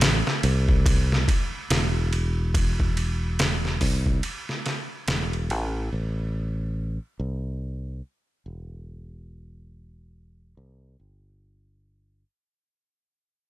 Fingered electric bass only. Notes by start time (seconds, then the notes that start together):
Already playing: A1
0.44 C2
1.70 E1
3.81 C2
5.08 E1
5.51 A1
5.93 A1
7.20 C2
8.46 E1
10.57 C2
11.00 G1